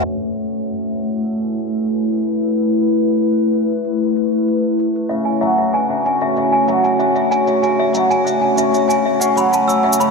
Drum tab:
SH |----x-----------x---x-x-x-x-x-x-|x---x-x-x---x-x-x---x-x-x-x-x-x-|x---x-x-----x-x-x---x-x-x-x-x-x-|x---x-x-x---x-x-x---x-x-x-x--xx-|